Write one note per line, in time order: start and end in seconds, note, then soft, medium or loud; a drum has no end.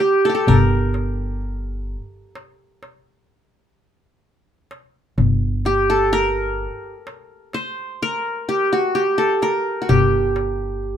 0.00 0.29 G4 medium
0.00 darbuka tek medium
0.25 0.34 A4 medium
0.29 1.55 G4 medium
0.35 0.54 A4 medium
0.47 1.95 G1 medium
0.47 2.32 A#4 medium
0.47 darbuka dum medium
0.94 darbuka tek medium
1.41 darbuka ka soft
2.35 darbuka tek medium
2.83 darbuka tek medium
4.71 darbuka tek medium
5.18 6.65 G1 medium
5.18 darbuka dum medium
5.65 6.91 G4 medium
5.65 darbuka tek medium
5.90 6.19 A4 medium
6.13 7.50 A#4 medium
7.07 darbuka tek medium
7.53 8.60 C5 medium
7.53 darbuka tek medium
8.03 9.16 A#4 medium
8.49 8.79 G4 medium
8.73 9.01 F#4 medium
8.95 9.88 G4 medium
9.18 9.49 A4 medium
9.42 10.56 A#4 medium
9.42 darbuka tek medium
9.82 9.95 F#4 soft
9.89 10.97 G1 medium
9.89 10.97 G4 medium
9.89 darbuka dum medium
10.13 darbuka ka soft
10.36 darbuka tek medium
10.83 darbuka ka soft